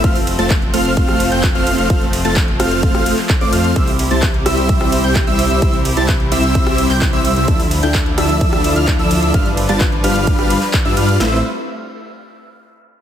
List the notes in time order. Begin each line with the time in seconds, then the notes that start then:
Already playing: C4
0.04 F1 F3 A3 C4 F4 C5 F5 F6, kick, closed hi-hat, ride
0.15 open hi-hat
0.27 open hi-hat, ride
0.39 F1 A3 C4 F4 C5 A5 A6, closed hi-hat
0.50 kick, clap, closed hi-hat, ride
0.62 closed hi-hat
0.73 F1 A3 C4 F4 C5 F5 F6, open hi-hat, ride
0.85 closed hi-hat
0.97 kick, closed hi-hat, ride
1.08 cross-stick, closed hi-hat
1.20 open hi-hat, ride
1.32 F1 A3 C4 F4 C5 G5 G6, closed hi-hat
1.43 kick, clap, closed hi-hat, ride
1.55 F1 A3 C4 F4 C5 F5 F6, closed hi-hat
1.67 open hi-hat, ride
1.78 F1 A3 C4 F4 C5 F5 F6, closed hi-hat
1.90 F1 A3 C4 F4 C5 F5 F6, kick, closed hi-hat, ride
2.02 closed hi-hat
2.13 open hi-hat, ride
2.25 F1 A3 C4 F4 C5 A5 A6, closed hi-hat
2.36 kick, clap, closed hi-hat, ride
2.48 closed hi-hat
2.60 F1 A3 C4 F4 C5 F5 F6, cross-stick, open hi-hat, ride
2.71 closed hi-hat
2.83 kick, closed hi-hat, ride
2.95 cross-stick, closed hi-hat
3.06 open hi-hat, ride
3.18 clap, open hi-hat
3.29 kick, clap, closed hi-hat, ride
3.41 F1 A3 C4 F4 C5 D5 D6, closed hi-hat
3.53 F2 A3 C4 F4 C5 F5 F6, open hi-hat, ride
3.64 closed hi-hat
3.76 C2 C3 G3 C4 E4 G4 C5 E5 E6, kick, closed hi-hat, ride
3.88 open hi-hat
3.99 open hi-hat, ride
4.11 C2 G3 C4 E4 C5 A5 A6, closed hi-hat
4.22 kick, clap, closed hi-hat, ride
4.34 closed hi-hat
4.46 C2 G3 C4 E4 C5 E5 E6, cross-stick, open hi-hat, ride
4.57 closed hi-hat
4.69 kick, closed hi-hat, ride
4.81 cross-stick, closed hi-hat
4.92 open hi-hat, ride
5.04 C2 G3 C4 E4 C5 G5 G6, closed hi-hat
5.15 kick, clap, closed hi-hat, ride
5.27 C2 G3 C4 E4 C5 E5 E6, closed hi-hat
5.39 open hi-hat, ride
5.50 C2 G3 C4 E4 C5 E5 E6, closed hi-hat
5.62 C2 G3 C4 E4 C5 E5 E6, kick, closed hi-hat, ride
5.74 closed hi-hat
5.85 open hi-hat, ride
5.97 C2 G3 C4 E4 C5 A5 A6, closed hi-hat
6.08 kick, clap, closed hi-hat, ride
6.20 closed hi-hat
6.32 C2 G3 C4 E4 C5 E5 E6, open hi-hat, ride
6.43 closed hi-hat
6.55 kick, closed hi-hat, ride
6.67 cross-stick, closed hi-hat
6.78 open hi-hat, ride
6.90 C2 G3 C4 E4 C5 G5 G6, clap, open hi-hat
7.02 kick, clap, closed hi-hat, ride
7.13 C2 G3 C4 E4 C5 E5 E6, closed hi-hat
7.25 open hi-hat, ride
7.36 C2 G3 C4 E4 C5 E5 E6, closed hi-hat
7.48 D2 D3 F3 D4 E4 A4 E6, kick, closed hi-hat, ride
7.60 open hi-hat
7.71 open hi-hat, ride
7.83 D2 F3 D4 E4 A4 G5 G6, closed hi-hat
7.94 kick, clap, closed hi-hat, ride
8.06 closed hi-hat
8.18 D2 F3 D4 E4 A4 E5 E6, cross-stick, open hi-hat, ride
8.29 closed hi-hat
8.41 kick, closed hi-hat, ride
8.53 cross-stick, closed hi-hat
8.64 open hi-hat, ride
8.76 D2 F3 D4 E4 A4 F5 F6, closed hi-hat
8.88 kick, clap, closed hi-hat, ride
8.99 D2 F3 D4 E4 A4 E5 E6, closed hi-hat
9.11 open hi-hat, ride
9.22 D2 F3 D4 E4 A4 E5 E6, closed hi-hat
9.34 G1 G3 D4 F4 B4 F5 F6, kick, closed hi-hat, ride
9.46 closed hi-hat
9.57 open hi-hat, ride
9.69 G1 G3 D4 F4 B4 A5 A6, closed hi-hat
9.81 kick, clap, closed hi-hat, ride
9.92 closed hi-hat
10.04 G1 G3 D4 F4 B4 F5 F6, open hi-hat, ride
10.16 closed hi-hat
10.27 kick, closed hi-hat, ride
10.39 cross-stick, closed hi-hat
10.50 open hi-hat, ride
10.62 clap, open hi-hat
10.74 kick, clap, closed hi-hat, ride
10.85 G2 G3 D4 F4 B4 E5 E6, closed hi-hat
10.97 G2 G3 D4 F4 B4 F5 F6, open hi-hat, ride
11.09 closed hi-hat
11.20 A1 A3 C4 E4 B4 C5 E5 E6, snare